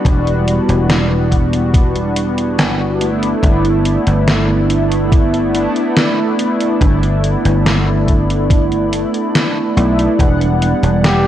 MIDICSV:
0, 0, Header, 1, 6, 480
1, 0, Start_track
1, 0, Key_signature, 1, "major"
1, 0, Tempo, 845070
1, 31, Time_signature, 4, 2, 24, 8
1, 6404, End_track
2, 0, Start_track
2, 0, Title_t, "Ambient pad"
2, 0, Program_c, 0, 92
2, 0, Note_on_c, 0, 64, 83
2, 0, Note_on_c, 0, 74, 76
2, 0, Note_on_c, 0, 83, 90
2, 1688, Note_off_c, 0, 74, 0
2, 1688, Note_off_c, 0, 83, 0
2, 1710, Note_on_c, 0, 74, 73
2, 1711, Note_on_c, 0, 83, 91
2, 6404, Note_off_c, 0, 64, 0
2, 6404, Note_off_c, 0, 74, 0
2, 6404, Note_off_c, 0, 83, 0
2, 6404, End_track
3, 0, Start_track
3, 0, Title_t, "Flugelhorn"
3, 0, Program_c, 1, 56
3, 6277, Note_on_c, 1, 67, 93
3, 6404, Note_off_c, 1, 67, 0
3, 6404, End_track
4, 0, Start_track
4, 0, Title_t, "Analog polysynth"
4, 0, Program_c, 2, 90
4, 0, Control_c, 2, 64, 127
4, 0, Note_on_c, 2, 55, 89
4, 0, Note_on_c, 2, 59, 79
4, 0, Note_on_c, 2, 62, 82
4, 0, Note_on_c, 2, 66, 94
4, 20, Note_off_c, 2, 55, 0
4, 20, Note_on_c, 2, 55, 77
4, 26, Note_off_c, 2, 59, 0
4, 26, Note_on_c, 2, 59, 73
4, 32, Note_off_c, 2, 62, 0
4, 32, Note_on_c, 2, 62, 68
4, 37, Note_off_c, 2, 66, 0
4, 37, Note_on_c, 2, 66, 85
4, 1677, Note_off_c, 2, 55, 0
4, 1680, Note_off_c, 2, 59, 0
4, 1683, Note_off_c, 2, 62, 0
4, 1685, Note_off_c, 2, 66, 0
4, 1706, Note_on_c, 2, 57, 81
4, 1708, Note_on_c, 2, 59, 77
4, 1711, Note_on_c, 2, 62, 74
4, 1714, Note_on_c, 2, 64, 90
4, 1717, Control_c, 2, 64, 0
4, 1808, Control_c, 2, 64, 127
4, 1920, Note_off_c, 2, 57, 0
4, 1921, Note_off_c, 2, 59, 0
4, 1923, Note_off_c, 2, 62, 0
4, 1924, Note_off_c, 2, 64, 0
4, 1942, Note_on_c, 2, 57, 87
4, 1946, Note_on_c, 2, 59, 80
4, 1952, Note_on_c, 2, 62, 78
4, 1958, Note_on_c, 2, 64, 98
4, 3118, Note_off_c, 2, 57, 0
4, 3120, Note_off_c, 2, 59, 0
4, 3123, Note_off_c, 2, 62, 0
4, 3126, Note_off_c, 2, 64, 0
4, 3141, Note_on_c, 2, 57, 88
4, 3146, Note_on_c, 2, 59, 78
4, 3151, Note_on_c, 2, 62, 82
4, 3158, Note_on_c, 2, 64, 98
4, 3837, Note_off_c, 2, 57, 0
4, 3840, Note_off_c, 2, 59, 0
4, 3843, Note_off_c, 2, 62, 0
4, 3846, Note_off_c, 2, 64, 0
4, 3857, Note_on_c, 2, 57, 77
4, 3863, Note_on_c, 2, 59, 68
4, 3869, Note_on_c, 2, 62, 70
4, 3876, Note_on_c, 2, 64, 85
4, 5515, Note_off_c, 2, 57, 0
4, 5518, Note_off_c, 2, 59, 0
4, 5521, Note_off_c, 2, 62, 0
4, 5525, Note_off_c, 2, 64, 0
4, 5547, Note_on_c, 2, 57, 96
4, 5549, Note_on_c, 2, 59, 82
4, 5551, Note_on_c, 2, 62, 85
4, 5554, Note_on_c, 2, 64, 102
4, 5760, Note_off_c, 2, 57, 0
4, 5761, Note_off_c, 2, 59, 0
4, 5763, Note_off_c, 2, 62, 0
4, 5764, Note_off_c, 2, 64, 0
4, 5779, Note_on_c, 2, 55, 87
4, 5785, Note_on_c, 2, 59, 82
4, 5791, Note_on_c, 2, 62, 76
4, 5797, Control_c, 2, 64, 0
4, 5797, Note_on_c, 2, 78, 96
4, 5900, Control_c, 2, 64, 127
4, 6404, Note_off_c, 2, 55, 0
4, 6404, Note_off_c, 2, 59, 0
4, 6404, Note_off_c, 2, 62, 0
4, 6404, Note_off_c, 2, 78, 0
4, 6404, End_track
5, 0, Start_track
5, 0, Title_t, "Slap bass"
5, 0, Program_c, 3, 36
5, 28, Note_on_c, 3, 28, 93
5, 333, Note_off_c, 3, 28, 0
5, 390, Note_on_c, 3, 28, 85
5, 1467, Note_off_c, 3, 28, 0
5, 1467, Note_on_c, 3, 31, 76
5, 1892, Note_off_c, 3, 31, 0
5, 1948, Note_on_c, 3, 31, 95
5, 2253, Note_off_c, 3, 31, 0
5, 2310, Note_on_c, 3, 31, 81
5, 3213, Note_off_c, 3, 31, 0
5, 3869, Note_on_c, 3, 31, 95
5, 4173, Note_off_c, 3, 31, 0
5, 4231, Note_on_c, 3, 31, 78
5, 5134, Note_off_c, 3, 31, 0
5, 5549, Note_on_c, 3, 35, 81
5, 5719, Note_off_c, 3, 35, 0
5, 5790, Note_on_c, 3, 28, 94
5, 6094, Note_off_c, 3, 28, 0
5, 6150, Note_on_c, 3, 28, 83
5, 6404, Note_off_c, 3, 28, 0
5, 6404, End_track
6, 0, Start_track
6, 0, Title_t, "Drums"
6, 29, Note_on_c, 9, 36, 114
6, 33, Note_on_c, 9, 42, 78
6, 85, Note_off_c, 9, 36, 0
6, 90, Note_off_c, 9, 42, 0
6, 154, Note_on_c, 9, 42, 37
6, 211, Note_off_c, 9, 42, 0
6, 271, Note_on_c, 9, 42, 80
6, 328, Note_off_c, 9, 42, 0
6, 393, Note_on_c, 9, 42, 48
6, 450, Note_off_c, 9, 42, 0
6, 509, Note_on_c, 9, 38, 119
6, 509, Note_on_c, 9, 42, 83
6, 566, Note_off_c, 9, 38, 0
6, 566, Note_off_c, 9, 42, 0
6, 748, Note_on_c, 9, 36, 64
6, 750, Note_on_c, 9, 42, 79
6, 804, Note_off_c, 9, 36, 0
6, 807, Note_off_c, 9, 42, 0
6, 870, Note_on_c, 9, 42, 55
6, 927, Note_off_c, 9, 42, 0
6, 988, Note_on_c, 9, 36, 119
6, 990, Note_on_c, 9, 42, 81
6, 1044, Note_off_c, 9, 36, 0
6, 1046, Note_off_c, 9, 42, 0
6, 1111, Note_on_c, 9, 42, 39
6, 1168, Note_off_c, 9, 42, 0
6, 1229, Note_on_c, 9, 42, 81
6, 1286, Note_off_c, 9, 42, 0
6, 1351, Note_on_c, 9, 42, 57
6, 1408, Note_off_c, 9, 42, 0
6, 1471, Note_on_c, 9, 38, 120
6, 1471, Note_on_c, 9, 42, 81
6, 1527, Note_off_c, 9, 38, 0
6, 1527, Note_off_c, 9, 42, 0
6, 1710, Note_on_c, 9, 42, 81
6, 1767, Note_off_c, 9, 42, 0
6, 1833, Note_on_c, 9, 42, 53
6, 1890, Note_off_c, 9, 42, 0
6, 1947, Note_on_c, 9, 36, 121
6, 1951, Note_on_c, 9, 42, 76
6, 2004, Note_off_c, 9, 36, 0
6, 2008, Note_off_c, 9, 42, 0
6, 2072, Note_on_c, 9, 42, 36
6, 2128, Note_off_c, 9, 42, 0
6, 2188, Note_on_c, 9, 42, 80
6, 2245, Note_off_c, 9, 42, 0
6, 2310, Note_on_c, 9, 42, 51
6, 2367, Note_off_c, 9, 42, 0
6, 2429, Note_on_c, 9, 38, 122
6, 2429, Note_on_c, 9, 42, 83
6, 2486, Note_off_c, 9, 38, 0
6, 2486, Note_off_c, 9, 42, 0
6, 2669, Note_on_c, 9, 42, 78
6, 2726, Note_off_c, 9, 42, 0
6, 2792, Note_on_c, 9, 42, 53
6, 2849, Note_off_c, 9, 42, 0
6, 2908, Note_on_c, 9, 36, 116
6, 2910, Note_on_c, 9, 42, 79
6, 2965, Note_off_c, 9, 36, 0
6, 2967, Note_off_c, 9, 42, 0
6, 3032, Note_on_c, 9, 42, 39
6, 3089, Note_off_c, 9, 42, 0
6, 3150, Note_on_c, 9, 42, 72
6, 3207, Note_off_c, 9, 42, 0
6, 3272, Note_on_c, 9, 42, 51
6, 3328, Note_off_c, 9, 42, 0
6, 3389, Note_on_c, 9, 38, 126
6, 3389, Note_on_c, 9, 42, 85
6, 3445, Note_off_c, 9, 38, 0
6, 3445, Note_off_c, 9, 42, 0
6, 3630, Note_on_c, 9, 42, 81
6, 3687, Note_off_c, 9, 42, 0
6, 3752, Note_on_c, 9, 42, 52
6, 3808, Note_off_c, 9, 42, 0
6, 3868, Note_on_c, 9, 36, 115
6, 3871, Note_on_c, 9, 42, 75
6, 3925, Note_off_c, 9, 36, 0
6, 3928, Note_off_c, 9, 42, 0
6, 3994, Note_on_c, 9, 42, 36
6, 4050, Note_off_c, 9, 42, 0
6, 4112, Note_on_c, 9, 42, 79
6, 4168, Note_off_c, 9, 42, 0
6, 4233, Note_on_c, 9, 42, 48
6, 4290, Note_off_c, 9, 42, 0
6, 4352, Note_on_c, 9, 38, 125
6, 4352, Note_on_c, 9, 42, 81
6, 4409, Note_off_c, 9, 38, 0
6, 4409, Note_off_c, 9, 42, 0
6, 4589, Note_on_c, 9, 36, 63
6, 4591, Note_on_c, 9, 42, 72
6, 4646, Note_off_c, 9, 36, 0
6, 4648, Note_off_c, 9, 42, 0
6, 4715, Note_on_c, 9, 42, 52
6, 4772, Note_off_c, 9, 42, 0
6, 4829, Note_on_c, 9, 36, 119
6, 4831, Note_on_c, 9, 42, 76
6, 4886, Note_off_c, 9, 36, 0
6, 4888, Note_off_c, 9, 42, 0
6, 4952, Note_on_c, 9, 42, 36
6, 5009, Note_off_c, 9, 42, 0
6, 5071, Note_on_c, 9, 42, 73
6, 5128, Note_off_c, 9, 42, 0
6, 5192, Note_on_c, 9, 42, 48
6, 5249, Note_off_c, 9, 42, 0
6, 5312, Note_on_c, 9, 38, 125
6, 5312, Note_on_c, 9, 42, 81
6, 5368, Note_off_c, 9, 38, 0
6, 5368, Note_off_c, 9, 42, 0
6, 5552, Note_on_c, 9, 42, 72
6, 5609, Note_off_c, 9, 42, 0
6, 5674, Note_on_c, 9, 42, 50
6, 5731, Note_off_c, 9, 42, 0
6, 5789, Note_on_c, 9, 36, 113
6, 5793, Note_on_c, 9, 42, 72
6, 5846, Note_off_c, 9, 36, 0
6, 5850, Note_off_c, 9, 42, 0
6, 5915, Note_on_c, 9, 42, 35
6, 5972, Note_off_c, 9, 42, 0
6, 6032, Note_on_c, 9, 42, 74
6, 6089, Note_off_c, 9, 42, 0
6, 6153, Note_on_c, 9, 42, 47
6, 6210, Note_off_c, 9, 42, 0
6, 6272, Note_on_c, 9, 38, 123
6, 6272, Note_on_c, 9, 42, 78
6, 6329, Note_off_c, 9, 38, 0
6, 6329, Note_off_c, 9, 42, 0
6, 6404, End_track
0, 0, End_of_file